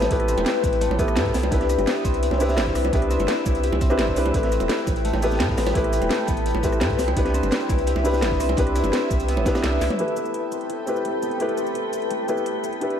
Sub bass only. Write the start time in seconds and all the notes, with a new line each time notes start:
0.11 A1
0.37 E1
0.64 A1
0.90 A1
1.16 A2
1.34 C2
1.52 C2
1.78 G1
2.05 C2
2.31 C2
2.58 G1
2.75 C2
2.93 C2
3.19 G1
3.46 C2
3.72 C2
3.99 G1
4.16 C2
4.34 A1
4.61 E1
4.87 A1
5.13 A1
5.40 A2
5.58 A1
5.75 A1
6.02 E1
6.28 A1
6.55 A1
6.81 A2
6.99 C2
7.16 C2
7.43 G1
7.69 C2
7.96 C2
8.22 G1
8.40 C2
8.58 C2
8.84 G1
9.11 C2
9.37 G1
9.63 C2
9.81 C2